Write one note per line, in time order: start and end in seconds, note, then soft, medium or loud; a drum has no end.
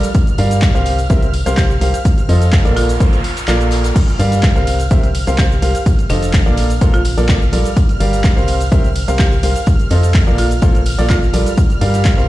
0.00 3.94 F6 medium
0.00 closed hi-hat medium
0.00 shaker medium
0.04 tambourine soft
0.15 kick loud
0.15 closed hi-hat medium
0.15 shaker medium
0.27 closed hi-hat soft
0.27 shaker soft
0.38 0.72 G2 loud
0.38 0.72 G3 medium
0.38 0.72 G4 medium
0.38 0.72 A#4 medium
0.38 0.72 D5 medium
0.38 0.72 F5 loud
0.38 closed hi-hat medium
0.38 open hi-hat loud
0.38 tambourine medium
0.51 snare soft
0.51 closed hi-hat medium
0.51 tambourine medium
0.51 shaker medium
0.62 kick loud
0.62 snare loud
0.62 clap loud
0.62 closed hi-hat medium
0.62 tambourine soft
0.62 shaker medium
0.75 1.08 C2 medium
0.75 0.98 C4 medium
0.75 0.98 G4 medium
0.75 0.98 A#4 medium
0.75 0.98 C5 medium
0.75 0.98 F5 medium
0.75 snare medium
0.75 shaker soft
0.85 closed hi-hat medium
0.85 open hi-hat loud
0.85 tambourine medium
0.99 closed hi-hat medium
0.99 tambourine medium
0.99 shaker medium
1.10 1.44 C2 loud
1.10 1.25 C4 loud
1.10 1.25 G4 medium
1.10 1.25 A#4 loud
1.10 1.25 C5 loud
1.10 1.25 E5 loud
1.10 kick loud
1.10 closed hi-hat medium
1.10 shaker medium
1.22 closed hi-hat soft
1.22 shaker soft
1.33 closed hi-hat medium
1.33 open hi-hat loud
1.33 tambourine medium
1.46 1.79 C2 loud
1.46 1.69 C4 loud
1.46 1.69 G4 medium
1.46 1.69 A#4 medium
1.46 1.69 C5 medium
1.46 1.69 F5 loud
1.46 closed hi-hat soft
1.46 closed hi-hat medium
1.46 tambourine medium
1.46 shaker medium
1.57 1.94 G4 loud
1.57 kick loud
1.57 snare loud
1.57 clap loud
1.57 closed hi-hat medium
1.57 closed hi-hat loud
1.57 shaker medium
1.71 shaker soft
1.81 1.94 C2 loud
1.81 1.96 G4 medium
1.81 1.96 A#4 medium
1.81 1.96 C5 medium
1.81 1.96 F5 medium
1.81 closed hi-hat medium
1.81 open hi-hat loud
1.81 tambourine loud
1.94 closed hi-hat medium
1.94 tambourine soft
1.94 shaker medium
2.05 kick loud
2.05 closed hi-hat medium
2.05 noise sweep medium
2.05 shaker medium
2.18 closed hi-hat soft
2.18 shaker soft
2.29 2.63 F2 loud
2.29 2.62 F3 medium
2.29 2.62 F4 medium
2.29 2.62 A4 medium
2.29 2.62 C5 medium
2.29 2.62 D#5 loud
2.29 closed hi-hat medium
2.29 open hi-hat loud
2.29 tambourine medium
2.42 snare soft
2.42 closed hi-hat medium
2.42 tambourine medium
2.42 shaker medium
2.53 kick loud
2.53 snare loud
2.53 clap loud
2.53 closed hi-hat medium
2.53 shaker medium
2.65 2.98 A#1 medium
2.65 2.88 A#3 medium
2.65 2.88 F4 medium
2.65 2.88 A4 medium
2.65 2.88 A#4 medium
2.65 2.88 D5 loud
2.65 snare soft
2.65 closed hi-hat soft
2.65 shaker soft
2.76 2.98 F4 loud
2.76 closed hi-hat medium
2.76 open hi-hat loud
2.76 tambourine loud
2.89 closed hi-hat medium
2.89 tambourine medium
2.89 shaker medium
3.00 3.13 A#1 loud
3.00 3.15 A#3 loud
3.00 3.15 F4 loud
3.00 3.15 A4 medium
3.00 3.15 A#4 loud
3.00 3.15 C5 loud
3.00 kick loud
3.00 closed hi-hat medium
3.00 shaker medium
3.13 closed hi-hat soft
3.13 shaker soft
3.24 closed hi-hat medium
3.24 open hi-hat loud
3.24 tambourine medium
3.37 closed hi-hat medium
3.37 tambourine medium
3.37 shaker medium
3.47 3.92 A#1 loud
3.47 3.94 A#3 loud
3.47 3.94 F4 medium
3.47 3.96 F4 loud
3.47 3.94 A4 medium
3.47 3.94 A#4 medium
3.47 3.94 D5 loud
3.47 snare loud
3.47 clap loud
3.47 closed hi-hat medium
3.47 tambourine soft
3.47 shaker medium
3.61 closed hi-hat soft
3.61 shaker soft
3.71 snare loud
3.71 closed hi-hat medium
3.71 open hi-hat loud
3.71 tambourine loud
3.84 snare loud
3.84 closed hi-hat medium
3.84 tambourine medium
3.84 shaker medium
3.96 12.28 F6 medium
3.96 kick loud
3.96 closed hi-hat medium
3.96 closed hi-hat loud
3.96 crash medium
3.96 tambourine soft
3.96 shaker medium
4.08 closed hi-hat soft
4.08 shaker soft
4.19 4.53 G2 loud
4.19 4.53 G3 medium
4.19 4.53 G4 medium
4.19 4.53 A#4 medium
4.19 4.53 D5 medium
4.19 4.53 F5 loud
4.19 closed hi-hat medium
4.19 open hi-hat loud
4.19 ride medium
4.19 tambourine loud
4.31 snare soft
4.31 closed hi-hat medium
4.31 tambourine medium
4.31 shaker medium
4.43 kick loud
4.43 snare loud
4.43 clap loud
4.43 closed hi-hat medium
4.43 shaker medium
4.56 4.89 C2 loud
4.56 4.79 C4 medium
4.56 4.79 G4 medium
4.56 4.79 A#4 medium
4.56 4.79 C5 medium
4.56 4.79 F5 loud
4.56 snare soft
4.56 shaker soft
4.67 closed hi-hat medium
4.67 open hi-hat loud
4.67 ride medium
4.67 tambourine medium
4.79 closed hi-hat medium
4.79 tambourine soft
4.79 shaker medium
4.91 5.25 C2 loud
4.91 5.06 C4 loud
4.91 5.06 G4 loud
4.91 5.06 A#4 medium
4.91 5.06 C5 medium
4.91 5.06 E5 loud
4.91 kick loud
4.91 closed hi-hat medium
4.91 tambourine soft
4.91 shaker medium
5.03 closed hi-hat soft
5.03 shaker soft
5.15 closed hi-hat medium
5.15 open hi-hat loud
5.15 ride medium
5.15 tambourine medium
5.27 5.60 C2 medium
5.27 5.50 C4 medium
5.27 5.50 G4 medium
5.27 5.50 A#4 medium
5.27 5.50 C5 medium
5.27 5.50 F5 loud
5.27 closed hi-hat soft
5.27 closed hi-hat medium
5.27 tambourine medium
5.27 shaker medium
5.38 5.75 G4 loud
5.38 kick loud
5.38 snare loud
5.38 clap loud
5.38 closed hi-hat medium
5.38 shaker medium
5.52 shaker soft
5.62 5.75 C2 loud
5.62 5.77 G4 medium
5.62 5.77 A#4 medium
5.62 5.77 C5 medium
5.62 5.77 F5 medium
5.62 closed hi-hat medium
5.62 open hi-hat loud
5.62 ride medium
5.62 tambourine medium
5.75 closed hi-hat medium
5.75 tambourine soft
5.75 shaker medium
5.86 kick loud
5.86 closed hi-hat medium
5.86 tambourine soft
5.86 shaker medium
5.99 closed hi-hat soft
5.99 shaker soft
6.09 6.44 F1 loud
6.09 6.43 F3 medium
6.09 6.31 D4 medium
6.09 6.43 F4 medium
6.09 6.43 A4 medium
6.09 6.43 C5 medium
6.09 6.43 D#5 loud
6.09 snare medium
6.09 closed hi-hat medium
6.09 open hi-hat loud
6.09 ride medium
6.09 tambourine loud
6.23 closed hi-hat medium
6.23 tambourine medium
6.23 shaker medium
6.33 kick loud
6.33 snare loud
6.33 clap loud
6.33 closed hi-hat medium
6.33 shaker medium
6.46 6.79 A#1 loud
6.46 6.69 A#3 medium
6.46 6.69 F4 medium
6.46 6.69 A4 medium
6.46 6.69 A#4 medium
6.46 6.69 D5 loud
6.46 snare soft
6.46 shaker soft
6.57 closed hi-hat medium
6.57 open hi-hat loud
6.57 ride medium
6.57 tambourine medium
6.70 closed hi-hat medium
6.70 tambourine medium
6.70 shaker medium
6.81 7.15 A#1 loud
6.81 6.96 A#3 loud
6.81 6.96 F4 loud
6.81 6.96 A4 loud
6.81 6.96 A#4 medium
6.81 6.96 C5 loud
6.81 kick loud
6.81 closed hi-hat loud
6.81 closed hi-hat medium
6.81 shaker medium
6.94 7.29 F4 loud
6.94 closed hi-hat soft
6.94 shaker soft
7.05 open hi-hat medium
7.05 open hi-hat loud
7.05 ride medium
7.05 tambourine loud
7.17 7.50 A#1 loud
7.17 7.41 A#3 medium
7.17 7.41 F4 medium
7.17 7.41 A4 medium
7.17 7.41 A#4 medium
7.17 7.41 D5 loud
7.17 closed hi-hat medium
7.17 tambourine medium
7.17 shaker medium
7.29 kick loud
7.29 snare loud
7.29 clap loud
7.29 closed hi-hat medium
7.29 shaker medium
7.42 shaker soft
7.53 7.65 A#1 loud
7.53 7.68 G3 medium
7.53 7.68 F4 medium
7.53 7.68 A4 medium
7.53 7.68 A#4 medium
7.53 7.68 D5 medium
7.53 closed hi-hat medium
7.53 open hi-hat loud
7.53 ride medium
7.53 tambourine loud
7.64 closed hi-hat medium
7.64 tambourine soft
7.64 shaker medium
7.77 kick loud
7.77 closed hi-hat medium
7.77 tambourine soft
7.77 shaker medium
7.89 closed hi-hat soft
7.89 shaker soft
8.00 8.34 G1 loud
8.00 8.34 G3 medium
8.00 8.34 G4 medium
8.00 8.34 A#4 medium
8.00 8.34 D5 medium
8.00 8.34 F5 medium
8.00 closed hi-hat medium
8.00 open hi-hat loud
8.00 ride medium
8.00 tambourine loud
8.13 snare soft
8.13 closed hi-hat medium
8.13 tambourine medium
8.13 shaker medium
8.24 kick loud
8.24 snare loud
8.24 clap loud
8.24 closed hi-hat medium
8.24 shaker medium
8.37 8.69 C2 medium
8.37 8.60 C4 medium
8.37 8.60 G4 medium
8.37 8.60 A#4 medium
8.37 8.60 C5 medium
8.37 8.60 F5 loud
8.37 snare soft
8.37 shaker soft
8.48 closed hi-hat medium
8.48 open hi-hat loud
8.48 ride medium
8.48 tambourine loud
8.60 closed hi-hat medium
8.60 tambourine medium
8.60 shaker medium
8.72 9.06 C2 loud
8.72 8.87 C4 loud
8.72 8.87 G4 medium
8.72 8.87 A#4 medium
8.72 8.87 C5 medium
8.72 8.87 E5 loud
8.72 kick loud
8.72 closed hi-hat medium
8.72 shaker medium
8.84 closed hi-hat soft
8.84 shaker soft
8.96 closed hi-hat medium
8.96 open hi-hat loud
8.96 ride medium
8.96 tambourine loud
9.08 9.41 C2 loud
9.08 9.31 C4 medium
9.08 9.31 G4 medium
9.08 9.31 A#4 medium
9.08 9.31 C5 medium
9.08 9.31 F5 loud
9.08 closed hi-hat soft
9.08 closed hi-hat medium
9.08 tambourine medium
9.08 shaker medium
9.19 9.56 G4 loud
9.19 kick loud
9.19 snare loud
9.19 clap loud
9.19 closed hi-hat medium
9.19 shaker medium
9.32 shaker soft
9.43 9.56 C2 medium
9.43 9.58 G4 medium
9.43 9.58 A#4 medium
9.43 9.58 C5 medium
9.43 9.58 F5 medium
9.43 closed hi-hat medium
9.43 open hi-hat loud
9.43 ride medium
9.43 tambourine loud
9.56 closed hi-hat medium
9.56 tambourine medium
9.56 shaker medium
9.66 kick loud
9.66 closed hi-hat medium
9.66 tambourine soft
9.66 shaker medium
9.80 closed hi-hat soft
9.80 shaker soft
9.90 10.25 F2 loud
9.90 10.24 F3 medium
9.90 10.24 F4 medium
9.90 10.24 A4 medium
9.90 10.24 C5 medium
9.90 10.24 D#5 loud
9.90 snare medium
9.90 closed hi-hat medium
9.90 open hi-hat loud
9.90 ride medium
9.90 tambourine medium
10.03 closed hi-hat soft
10.03 tambourine medium
10.03 shaker medium
10.14 kick loud
10.14 snare loud
10.14 clap loud
10.14 closed hi-hat medium
10.14 tambourine soft
10.14 shaker medium
10.27 10.60 A#1 loud
10.27 10.50 A#3 medium
10.27 10.50 F4 medium
10.27 10.50 A4 medium
10.27 10.50 A#4 medium
10.27 10.50 D5 medium
10.27 snare soft
10.27 shaker soft
10.38 10.60 F4 medium
10.38 closed hi-hat medium
10.38 open hi-hat loud
10.38 ride medium
10.38 tambourine loud
10.51 closed hi-hat soft
10.51 tambourine medium
10.51 shaker medium
10.62 10.96 A#1 loud
10.62 10.77 A#3 loud
10.62 10.77 F4 loud
10.62 10.77 A4 medium
10.62 10.77 A#4 medium
10.62 10.77 C5 loud
10.62 kick loud
10.62 closed hi-hat medium
10.62 tambourine soft
10.62 shaker medium
10.75 closed hi-hat soft
10.75 shaker soft
10.86 open hi-hat medium
10.86 open hi-hat loud
10.86 ride medium
10.86 tambourine loud
10.98 11.31 A#1 loud
10.98 11.22 A#3 medium
10.98 11.22 F4 medium
10.98 11.22 A4 medium
10.98 11.22 A#4 medium
10.98 11.22 D5 loud
10.98 closed hi-hat medium
10.98 tambourine medium
10.98 shaker medium
11.09 11.58 F4 loud
11.09 kick loud
11.09 snare loud
11.09 clap loud
11.09 closed hi-hat loud
11.09 closed hi-hat medium
11.09 shaker medium
11.23 shaker soft
11.33 11.46 A#1 loud
11.33 11.49 G3 medium
11.33 11.49 F4 medium
11.33 11.49 A4 medium
11.33 11.49 A#4 medium
11.33 11.49 D5 medium
11.33 closed hi-hat medium
11.33 open hi-hat loud
11.33 ride medium
11.33 tambourine loud
11.46 closed hi-hat medium
11.46 tambourine medium
11.46 shaker medium
11.57 kick loud
11.57 closed hi-hat loud
11.57 closed hi-hat medium
11.57 tambourine soft
11.57 shaker medium
11.70 closed hi-hat soft
11.70 shaker soft
11.81 12.15 G2 loud
11.81 12.15 G3 medium
11.81 12.15 G4 medium
11.81 12.15 A#4 medium
11.81 12.15 D5 medium
11.81 12.15 F5 loud
11.81 closed hi-hat medium
11.81 open hi-hat loud
11.81 ride medium
11.81 tambourine loud
11.94 snare medium
11.94 closed hi-hat medium
11.94 tambourine medium
11.94 shaker medium
12.05 kick loud
12.05 snare loud
12.05 clap loud
12.05 closed hi-hat medium
12.05 tambourine soft
12.05 shaker medium
12.18 12.28 C2 loud
12.18 12.28 C4 medium
12.18 12.28 G4 medium
12.18 12.28 A#4 medium
12.18 12.28 C5 medium
12.18 12.28 F5 loud
12.18 snare soft
12.18 shaker soft